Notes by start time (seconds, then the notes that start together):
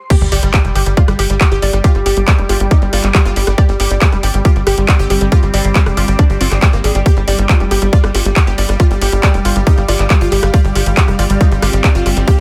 0.10 G3 G4, kick, closed hi-hat, crash, sub drop
0.21 G1 G3 G4, closed hi-hat
0.32 G1 G4 D5, open hi-hat
0.42 G1 G3 D5, closed hi-hat
0.51 G3 G4 D6, kick, cross-stick, clap, closed hi-hat
0.65 F1 G3, closed hi-hat
0.75 G1 G4, open hi-hat
0.86 G1 G3, closed hi-hat
0.97 F4 D5, kick, closed hi-hat
1.08 G1 G3, cross-stick, closed hi-hat
1.19 G1 G4, open hi-hat
1.30 G1 G3, closed hi-hat
1.41 G4, kick, clap, closed hi-hat
1.52 G1 G4, closed hi-hat
1.62 G1 G3 D5, open hi-hat
1.73 G1 G3, cross-stick, closed hi-hat
1.84 F4 G4, kick, closed hi-hat
1.95 G1 G3, closed hi-hat
2.06 G1 G4, open hi-hat
2.17 G1 G3, closed hi-hat
2.28 G3 D5, kick, cross-stick, clap, closed hi-hat
2.38 F1 G3, closed hi-hat
2.49 G1 F4 G4, open hi-hat
2.60 G1 G3, closed hi-hat
2.71 D#4 G4, kick, closed hi-hat
2.82 G1 G3, closed hi-hat
2.93 G1 F4 D5, cross-stick, open hi-hat
3.04 G1 G3, clap, closed hi-hat
3.15 G3 G4, kick, clap, closed hi-hat
3.25 G1 F4, closed hi-hat
3.36 G1 G3 G4, open hi-hat
3.47 G1 G3, cross-stick, closed hi-hat
3.58 C4 G4 D5, kick, closed hi-hat
3.69 G1 G3, closed hi-hat
3.80 G1 G4, open hi-hat
3.91 G1 G3, closed hi-hat
4.02 G3 G4, kick, clap, closed hi-hat
4.12 F1 G3, cross-stick, closed hi-hat
4.23 G1 G4 D5, open hi-hat
4.34 G1 G3, closed hi-hat
4.45 F4 G4, kick, closed hi-hat
4.56 G1 G3, closed hi-hat
4.67 G1 G4, cross-stick, open hi-hat
4.78 G1 G3, closed hi-hat
4.88 D5, kick, clap, closed hi-hat
4.99 G1 G4, closed hi-hat
5.10 G1 G3 G4, open hi-hat
5.21 G1 G3, closed hi-hat
5.32 F4 G4, kick, cross-stick, closed hi-hat
5.43 G1 G3, closed hi-hat
5.54 G1 G4 D5, open hi-hat
5.65 G1 G3, closed hi-hat
5.75 G3 G4, kick, clap, closed hi-hat
5.86 F1 G3, cross-stick, closed hi-hat
5.97 G1 F4 G4, open hi-hat
6.08 G1 G3, closed hi-hat
6.19 D4 D5, kick, closed hi-hat
6.30 G1 G3, closed hi-hat
6.41 G1 C4 F4, open hi-hat
6.51 G1 G3, cross-stick, clap, closed hi-hat
6.62 G3 G5, kick, clap, closed hi-hat
6.73 G1 A#3, closed hi-hat
6.84 G#1 G3 G#4, open hi-hat
6.95 G1 G3 G4, closed hi-hat
7.06 G4, kick, closed hi-hat
7.17 G1 G3, closed hi-hat
7.28 G1 G4 D5, open hi-hat
7.38 G1 G3, closed hi-hat
7.46 G3 F4 F5, kick, cross-stick, clap, closed hi-hat
7.60 F1 G3, closed hi-hat
7.71 G1 G4, open hi-hat
7.82 G1 G3, closed hi-hat
7.93 F4 D5, kick, closed hi-hat
8.04 G1 G3, cross-stick, closed hi-hat
8.15 G1 F4 G4, open hi-hat
8.25 G1 G3, closed hi-hat
8.36 G3 G4, kick, clap, closed hi-hat
8.47 G1 G4, closed hi-hat
8.58 G1 G3 D5, open hi-hat
8.69 G1 G3, cross-stick, closed hi-hat
8.80 F4, kick, closed hi-hat
8.91 G1 G3, closed hi-hat
9.02 G1 G4, open hi-hat
9.12 G1 G3, closed hi-hat
9.23 G3 D5, kick, cross-stick, clap, closed hi-hat
9.34 F1 G3, closed hi-hat
9.45 G1 F4, open hi-hat
9.56 G1 G3, closed hi-hat
9.67 D#4 G4, kick, closed hi-hat
9.78 G1 G3, closed hi-hat
9.88 G1 F4 D5, cross-stick, open hi-hat
9.99 G1 G3, clap, closed hi-hat
10.10 G3 F4, kick, clap, closed hi-hat
10.21 G1 F4, closed hi-hat
10.32 G1 G3 G4, open hi-hat
10.43 G1 G3, cross-stick, closed hi-hat
10.54 C4 F4 D5, kick, closed hi-hat
10.65 G1 G3, closed hi-hat
10.75 G1 F4 G4, open hi-hat
10.86 G1 G3, closed hi-hat
10.97 G3 G4, kick, clap, closed hi-hat
11.08 F1 G3, cross-stick, closed hi-hat
11.19 G1 F4 D5, open hi-hat
11.30 G1 G3, closed hi-hat
11.41 D#4 F4, kick, closed hi-hat
11.52 G1 G3, closed hi-hat
11.62 G1 F4 G4, cross-stick, open hi-hat
11.73 G1 G3, closed hi-hat
11.84 G3 D5, kick, clap, closed hi-hat
11.95 G1 F4, closed hi-hat
12.06 G1 G3 F4, open hi-hat
12.17 G1 G3, closed hi-hat
12.28 G4, kick, cross-stick, closed hi-hat